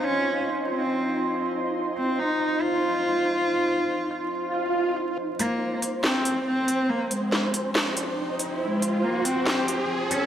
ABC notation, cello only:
X:1
M:4/4
L:1/8
Q:"Swing 16ths" 1/4=140
K:Fm
V:1 name="Cello"
D2 z C4 z | z C E2 F4- | F6 z2 | z B,2 z C2 C2 |
B, A,3 z4 | A,2 B, C C2 z D |]